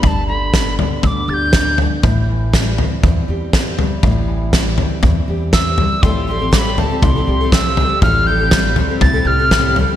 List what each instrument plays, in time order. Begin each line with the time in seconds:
Already playing: steel-string acoustic guitar D3 G4
0.02 upright bass G1, steel-string acoustic guitar G2, tin whistle B5, kick, floor tom
0.07 tin whistle A5
0.28 steel-string acoustic guitar D3, tin whistle B5
0.54 steel-string acoustic guitar B3, kick, snare
0.79 steel-string acoustic guitar D4, floor tom
1.03 upright bass D2, steel-string acoustic guitar G2, tin whistle D6 E6, kick, floor tom
1.28 upright bass D2, steel-string acoustic guitar G4, tin whistle A6
1.34 tin whistle G6
1.53 steel-string acoustic guitar F2, kick, snare
1.78 steel-string acoustic guitar G2, floor tom
2.03 upright bass A1, steel-string acoustic guitar A2, kick, floor tom
2.30 steel-string acoustic guitar E3
2.54 steel-string acoustic guitar G3, kick, snare
2.78 steel-string acoustic guitar C4, floor tom
3.03 upright bass E2, steel-string acoustic guitar E2, kick, floor tom
3.28 upright bass E2, steel-string acoustic guitar G4
3.53 steel-string acoustic guitar C4, kick, snare
3.79 steel-string acoustic guitar G3, floor tom
4.03 upright bass A1, steel-string acoustic guitar A2, kick, floor tom
4.27 steel-string acoustic guitar E3
4.53 steel-string acoustic guitar G3, kick, snare
4.78 steel-string acoustic guitar C4, floor tom
5.03 upright bass E2, steel-string acoustic guitar E2, kick, floor tom
5.28 upright bass E2, steel-string acoustic guitar G4
5.53 steel-string acoustic guitar C4, tin whistle E6, kick, snare
5.78 steel-string acoustic guitar G3, floor tom
6.02 upright bass A1, steel-string acoustic guitar A2, twelve-string acoustic guitar A2 F3 G3 C4 G4 A4, tin whistle C6, kick, floor tom
6.27 steel-string acoustic guitar F3, twelve-string acoustic guitar G3 C4 G4 A4, tin whistle C6
6.39 twelve-string acoustic guitar G3 C4 G4 A4
6.51 twelve-string acoustic guitar A2 F3 G3 C4 G4 A4, steel-string acoustic guitar G3, tin whistle D6, kick, snare
6.58 tin whistle B5
6.77 twelve-string acoustic guitar G3 C4 G4 A4, steel-string acoustic guitar C4, tin whistle A5, floor tom
6.90 twelve-string acoustic guitar G3 C4 G4 A4
7.01 upright bass C2, steel-string acoustic guitar A2, tin whistle C6, kick, floor tom
7.15 twelve-string acoustic guitar G3 C4 G4 A4
7.27 upright bass C2, steel-string acoustic guitar G4
7.41 twelve-string acoustic guitar G3 C4 G4 A4
7.52 twelve-string acoustic guitar A2 F3 G3 C4 G4 A4, steel-string acoustic guitar C4, tin whistle E6, kick, snare
7.77 steel-string acoustic guitar G3, twelve-string acoustic guitar G3 C4 G4, floor tom
7.81 twelve-string acoustic guitar A4
8.01 upright bass A1, steel-string acoustic guitar A2, twelve-string acoustic guitar A2 F3 G3 C4 G4, tin whistle F6, kick, floor tom
8.06 twelve-string acoustic guitar A4
8.25 steel-string acoustic guitar F3, twelve-string acoustic guitar G3 C4 G4, tin whistle G6
8.30 twelve-string acoustic guitar A4
8.39 twelve-string acoustic guitar G3 C4 G4 A4
8.51 twelve-string acoustic guitar A2 F3 G3 C4 G4 A4, steel-string acoustic guitar G3, kick, snare
8.76 twelve-string acoustic guitar G3 C4 G4 A4, steel-string acoustic guitar C4, floor tom
8.88 twelve-string acoustic guitar G3 C4 G4 A4
9.01 upright bass C2, steel-string acoustic guitar A2, tin whistle A6, kick, floor tom
9.14 twelve-string acoustic guitar G3 C4 G4 A4
9.25 upright bass C2, steel-string acoustic guitar G4, tin whistle F6
9.39 twelve-string acoustic guitar G3 C4 G4 A4
9.51 twelve-string acoustic guitar A2 F3 G3 C4 G4 A4, steel-string acoustic guitar C4, kick, snare
9.76 twelve-string acoustic guitar G3 C4 G4 A4, steel-string acoustic guitar G3, floor tom
9.87 twelve-string acoustic guitar C4 G4 A4
9.92 twelve-string acoustic guitar G3